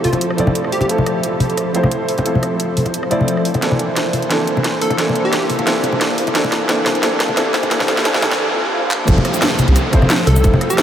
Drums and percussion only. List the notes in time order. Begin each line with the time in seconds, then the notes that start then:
0.04 open hi-hat, high conga
0.13 closed hi-hat, muted conga
0.21 closed hi-hat
0.30 cross-stick
0.38 closed hi-hat, muted conga
0.47 high conga
0.55 closed hi-hat
0.64 cross-stick
0.72 open hi-hat
0.81 closed hi-hat, muted conga
0.89 closed hi-hat
0.98 high conga
1.06 cross-stick, closed hi-hat
1.23 closed hi-hat
1.40 open hi-hat, high conga
1.50 closed hi-hat
1.57 cross-stick, closed hi-hat
1.75 closed hi-hat
1.83 cross-stick, high conga
1.91 closed hi-hat
2.09 open hi-hat
2.18 closed hi-hat, muted conga
2.26 closed hi-hat
2.35 high conga
2.43 cross-stick, closed hi-hat
2.60 closed hi-hat
2.77 open hi-hat, high conga
2.86 closed hi-hat, muted conga
2.94 closed hi-hat
3.03 cross-stick
3.11 closed hi-hat, muted conga
3.21 high conga
3.28 closed hi-hat
3.37 cross-stick
3.45 open hi-hat
3.54 closed hi-hat, muted conga
3.62 snare, closed hi-hat
3.71 high conga
3.79 closed hi-hat
3.96 snare, closed hi-hat
4.13 open hi-hat, high conga
4.22 closed hi-hat
4.31 snare, closed hi-hat
4.47 closed hi-hat
4.57 high conga
4.64 snare, closed hi-hat
4.82 open hi-hat
4.90 closed hi-hat, muted conga
4.98 snare, closed hi-hat
5.09 high conga
5.16 closed hi-hat
5.33 snare, closed hi-hat
5.50 open hi-hat, high conga
5.59 closed hi-hat, muted conga
5.67 snare, closed hi-hat
5.83 closed hi-hat, muted conga
5.93 high conga
6.01 snare, closed hi-hat
6.18 open hi-hat
6.27 closed hi-hat, muted conga
6.35 snare, closed hi-hat
6.44 high conga
6.52 snare, closed hi-hat
6.69 snare, closed hi-hat
6.86 snare, open hi-hat, high conga
6.95 closed hi-hat
7.03 snare, closed hi-hat
7.20 snare, closed hi-hat
7.29 high conga
7.37 snare, closed hi-hat
7.54 snare, open hi-hat
7.63 closed hi-hat, muted conga
7.71 snare, closed hi-hat
7.80 snare, high conga
7.88 snare, closed hi-hat
7.97 snare, closed hi-hat
8.05 snare, closed hi-hat
8.14 snare, muted conga
8.22 snare, open hi-hat, high conga
8.31 snare, closed hi-hat, muted conga
8.91 clap
9.08 kick, closed hi-hat, shaker
9.18 high conga
9.25 cross-stick, closed hi-hat
9.34 closed hi-hat, shaker
9.42 snare, closed hi-hat, shaker
9.59 closed hi-hat, high conga, shaker
9.68 closed hi-hat
9.76 cross-stick, closed hi-hat, shaker
9.93 kick, closed hi-hat, shaker
10.02 cross-stick, high conga
10.10 snare, closed hi-hat, shaker
10.27 open hi-hat, shaker
10.36 muted conga, shaker
10.44 kick, closed hi-hat, shaker
10.54 high conga
10.61 cross-stick, closed hi-hat
10.70 closed hi-hat, shaker
10.78 snare, closed hi-hat, shaker